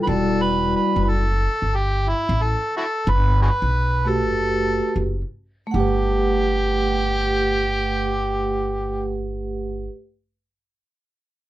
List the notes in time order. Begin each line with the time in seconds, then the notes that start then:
Already playing: A4
0.03 G3 E4 B4
0.07 E1 F#4 A4 D5
0.42 B4
0.76 B4
0.96 F#1
1.04 B4
1.09 A4
1.62 G1
1.76 G4
2.09 E4
2.29 A1
2.42 A4
2.77 E4 F#4 A4
3.07 G1 B4
3.42 F#4 G#4 B4
3.62 B1
4.05 A3 F#4 G4 A4 B4
4.29 F#1
4.96 F#1
5.67 A3
5.71 G1 F#5
5.75 G4
5.80 B4